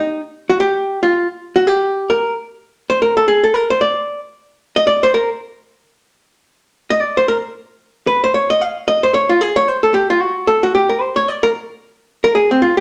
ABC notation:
X:1
M:4/4
L:1/8
Q:"Swing" 1/4=225
K:Gphr
V:1 name="Hollow-body jazz guitar"
E z2 _G =G3 F- | F z2 _G =G3 B- | B z4 c B =A | A =A B c d3 z |
z3 e d c B z | z8 | z3 e d c B z | z4 _c =c _d e |
f2 e c _d F A d | c =A G F _G2 A G | G B c _d =d B z2 | z3 B A C F z |]